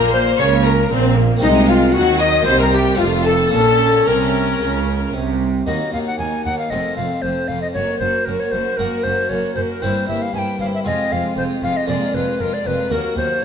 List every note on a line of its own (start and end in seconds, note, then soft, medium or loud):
0.00 0.38 A#1 medium
0.00 0.34 A#2 medium
0.00 0.37 A#2 loud
0.00 0.91 A#3 loud
0.00 1.35 A#3 medium
0.00 0.13 A#4 loud
0.00 1.37 A#4 medium
0.00 0.12 A#5 loud
0.12 0.19 C5 loud
0.12 0.39 C5 loud
0.12 0.39 C6 loud
0.38 0.89 C#2 medium
0.38 0.86 C#3 medium
0.38 0.89 C#3 medium
0.38 0.64 C#5 loud
0.38 0.65 C#5 loud
0.38 0.46 C#6 loud
0.63 0.90 A#4 medium
0.63 0.71 A#5 loud
0.90 1.41 A#1 loud
0.90 1.38 A#2 medium
0.90 1.41 A#2 medium
0.90 1.16 C4 medium
1.16 1.42 A#3 medium
1.36 2.40 A#3 medium
1.36 2.40 C4 medium
1.36 2.41 F#4 medium
1.41 1.92 C2 medium
1.41 1.89 C3 medium
1.41 1.92 C3 medium
1.41 1.93 G#3 medium
1.41 1.48 D#4 medium
1.41 1.66 D#4 loud
1.41 1.66 D#5 loud
1.67 1.95 F4 medium
1.67 1.94 F4 medium
1.67 1.93 F5 loud
1.92 2.46 D#2 medium
1.92 2.41 D#3 medium
1.92 2.46 D#3 medium
1.92 2.46 F#3 medium
1.92 2.19 F#4 loud
1.92 2.19 F#5 loud
2.19 2.45 D#5 loud
2.19 2.46 D#5 loud
2.19 2.45 D#6 loud
2.41 2.95 A#3 medium
2.41 2.94 C4 medium
2.41 2.96 E4 medium
2.45 2.98 C2 medium
2.45 2.95 C3 medium
2.45 2.98 C3 medium
2.45 2.99 G3 medium
2.45 2.58 C5 loud
2.45 2.59 C5 loud
2.45 2.59 C6 loud
2.59 2.65 A#4 medium
2.59 2.72 A#4 medium
2.59 2.72 A#5 loud
2.72 2.98 G4 medium
2.72 2.99 G5 loud
2.93 3.48 A3 medium
2.93 3.48 C4 medium
2.93 3.49 D#4 medium
2.98 3.51 F1 loud
2.98 3.48 F2 medium
2.98 3.51 F2 medium
2.98 3.52 A3 medium
2.98 3.25 F4 medium
2.98 3.05 F4 medium
2.98 3.25 F5 loud
3.24 3.50 A4 loud
3.24 3.52 A4 medium
3.24 3.51 A5 loud
3.48 5.60 A#3 medium
3.48 5.61 C#4 medium
3.48 5.62 F4 medium
3.48 4.04 A4 loud
3.52 4.05 A#1 medium
3.52 4.05 A#2 medium
3.52 4.02 A#2 medium
3.52 5.42 C#4 medium
3.52 4.09 A4 loud
3.52 4.05 A5 loud
4.05 4.59 C2 medium
4.05 4.59 C3 medium
4.05 4.56 C3 medium
4.05 5.11 A#4 medium
4.05 5.14 A#4 medium
4.05 5.13 A#5 medium
4.60 5.12 C#2 medium
4.60 5.12 C#3 medium
4.60 5.09 C#3 medium
5.13 5.66 C2 medium
5.13 5.62 C3 medium
5.13 5.65 C3 medium
5.66 5.74 D#2 soft
5.66 5.75 D#2 soft
5.66 5.90 D#2 soft
5.66 6.67 A#3 soft
5.66 5.92 A#3 soft
5.66 5.91 D#4 soft
5.66 6.67 D#4 soft
5.66 5.91 F#4 soft
5.66 6.68 F#4 soft
5.66 5.91 D#5 medium
5.92 6.00 D#2 soft
5.92 6.16 D#2 soft
5.92 6.01 D#2 soft
5.92 6.18 A#3 soft
5.92 6.17 D#4 soft
5.92 6.17 F#4 soft
5.92 5.99 F5 soft
6.07 6.18 F#5 medium
6.18 6.27 D#2 soft
6.18 6.42 D#2 soft
6.18 6.44 A#3 soft
6.18 6.43 D#4 soft
6.18 6.43 F#4 soft
6.18 6.44 G#5 medium
6.44 6.53 D#2 soft
6.44 6.69 D#2 soft
6.44 6.71 A#3 soft
6.44 6.70 D#4 soft
6.44 6.70 F#4 soft
6.44 6.58 F#5 medium
6.58 6.72 F5 medium
6.70 6.79 F1 soft
6.70 6.95 F2 soft
6.70 6.79 F2 soft
6.70 6.95 A3 soft
6.70 7.71 A3 soft
6.70 6.96 C4 soft
6.70 7.71 C4 soft
6.70 6.96 F4 soft
6.70 7.72 F4 soft
6.70 6.96 D#5 medium
6.96 7.06 F1 soft
6.96 7.05 F2 soft
6.96 7.21 F2 soft
6.96 7.22 A3 soft
6.96 7.22 C4 soft
6.96 7.21 F4 soft
6.96 7.23 F5 medium
7.22 7.32 F1 medium
7.22 7.31 F2 soft
7.22 7.47 F2 soft
7.22 7.47 A3 soft
7.22 7.48 C4 soft
7.22 7.48 F4 soft
7.22 7.49 C5 medium
7.48 7.57 F1 soft
7.48 7.57 F2 soft
7.48 7.73 F2 soft
7.48 7.74 A3 soft
7.48 7.75 C4 soft
7.48 7.74 F4 soft
7.48 7.61 F5 medium
7.62 7.68 D#5 medium
7.73 7.84 F#1 soft
7.73 7.98 F#2 soft
7.73 7.83 F#2 soft
7.73 8.00 A#3 soft
7.73 8.00 F#4 soft
7.73 7.99 A#4 soft
7.73 7.99 C#5 medium
7.99 8.09 F#1 soft
7.99 8.09 F#2 soft
7.99 8.25 F#2 soft
7.99 8.26 A#3 soft
7.99 8.26 F#4 soft
7.99 8.26 A#4 soft
7.99 8.27 C5 medium
8.25 8.35 F#1 soft
8.25 8.51 F#2 soft
8.25 8.36 F#2 soft
8.25 8.53 A#3 soft
8.25 8.52 F#4 soft
8.25 8.41 A#4 medium
8.25 8.52 A#4 soft
8.40 8.53 C#5 medium
8.52 8.61 F#1 soft
8.52 8.77 F#2 soft
8.52 8.61 F#2 soft
8.52 8.79 A#3 soft
8.52 8.78 F#4 soft
8.52 8.78 A#4 soft
8.52 8.79 C5 medium
8.77 8.87 F#1 soft
8.77 8.87 F#2 medium
8.77 9.03 F#2 soft
8.77 9.53 A#3 soft
8.77 9.05 A#3 soft
8.77 9.04 F#4 soft
8.77 9.54 F#4 soft
8.77 9.05 A#4 medium
8.77 9.05 A#4 soft
8.77 9.54 A#4 soft
9.03 9.13 F#1 soft
9.03 9.28 F#2 soft
9.03 9.13 F#2 soft
9.03 9.31 A#3 soft
9.03 9.29 F#4 soft
9.03 9.31 A#4 soft
9.03 9.31 C5 medium
9.29 9.39 F#1 medium
9.29 9.53 F#2 soft
9.29 9.39 F#2 soft
9.29 9.56 A#3 soft
9.29 9.55 F#4 soft
9.29 9.57 A#4 soft
9.29 9.55 C#5 medium
9.55 9.64 F#1 soft
9.55 9.79 F#2 soft
9.55 9.65 F#2 soft
9.55 9.82 A#3 soft
9.55 9.81 F#4 soft
9.55 9.83 A#4 soft
9.55 9.61 C5 medium
9.69 9.84 A#4 medium
9.82 9.90 G1 soft
9.82 10.05 G2 soft
9.82 9.91 G2 medium
9.82 10.08 A#3 soft
9.82 10.82 C4 soft
9.82 10.06 E4 soft
9.82 10.82 E4 soft
9.82 10.82 A#4 soft
9.82 10.08 C5 medium
9.82 10.08 C5 soft
10.07 10.16 G1 soft
10.07 10.31 G2 soft
10.07 10.16 G2 soft
10.07 10.33 A#3 soft
10.07 10.32 E4 soft
10.07 10.34 C5 soft
10.07 10.23 E5 medium
10.22 10.34 F5 medium
10.33 10.42 G1 soft
10.33 10.57 G2 soft
10.33 10.42 G2 soft
10.33 10.59 A#3 medium
10.33 10.59 E4 soft
10.33 10.59 C5 soft
10.33 10.40 G#5 medium
10.39 10.60 G5 medium
10.59 10.68 G1 soft
10.59 10.83 G2 soft
10.59 10.68 G2 medium
10.59 10.85 A#3 soft
10.59 10.85 E4 soft
10.59 10.85 C5 soft
10.59 10.66 F5 medium
10.74 10.80 E5 medium
10.84 10.94 F1 soft
10.84 11.08 F2 soft
10.84 10.93 F2 medium
10.84 11.11 G#3 soft
10.84 11.84 C4 soft
10.84 11.84 F4 soft
10.84 11.11 F4 soft
10.84 11.85 G#4 soft
10.84 11.11 C5 soft
10.84 11.14 D#5 medium
11.10 11.20 F1 soft
11.10 11.34 F2 soft
11.10 11.19 F2 medium
11.10 11.36 G#3 soft
11.10 11.37 F4 soft
11.10 11.36 C5 soft
11.10 11.37 F5 medium
11.36 11.45 F1 medium
11.36 11.60 F2 soft
11.36 11.45 F2 medium
11.36 11.62 G#3 soft
11.36 11.63 F4 soft
11.36 11.43 C5 medium
11.36 11.62 C5 soft
11.61 11.71 F1 soft
11.61 11.85 F2 soft
11.61 11.70 F2 soft
11.61 11.88 G#3 soft
11.61 11.88 F4 soft
11.61 11.89 C5 soft
11.61 11.78 F5 medium
11.77 11.88 D#5 medium
11.87 11.97 F1 medium
11.87 12.11 F2 soft
11.87 11.96 F2 medium
11.87 12.14 G#3 medium
11.87 12.86 A#3 soft
11.87 12.87 F4 soft
11.87 12.14 F4 medium
11.87 12.87 G#4 soft
11.87 12.13 A#4 medium
11.87 12.16 D5 medium
12.14 12.22 F1 medium
12.14 12.37 F2 soft
12.14 12.23 F2 soft
12.14 12.40 G#3 soft
12.14 12.39 F4 soft
12.14 12.39 A#4 soft
12.14 12.42 B4 medium
12.39 12.48 F1 soft
12.39 12.63 F2 soft
12.39 12.47 F2 medium
12.39 12.65 G#3 soft
12.39 12.65 F4 soft
12.39 12.64 A#4 soft
12.39 12.55 A#4 medium
12.54 12.68 D5 medium
12.64 12.74 F1 soft
12.64 12.88 F2 soft
12.64 12.73 F2 medium
12.64 12.91 G#3 soft
12.64 12.91 F4 medium
12.64 12.90 A#4 soft
12.64 12.93 B4 medium
12.90 12.98 D#2 medium
12.90 13.14 D#2 soft
12.90 12.99 D#2 medium
12.90 13.15 F#3 medium
12.90 13.45 A#3 soft
12.90 13.45 F#4 soft
12.90 13.17 F#4 medium
12.90 13.16 A#4 medium
12.90 13.45 A#4 soft
13.16 13.39 D#2 soft
13.16 13.25 D#2 medium
13.16 13.25 D#2 soft
13.16 13.41 F#3 medium
13.16 13.41 F#4 soft
13.16 13.41 A#4 soft
13.16 13.44 C5 medium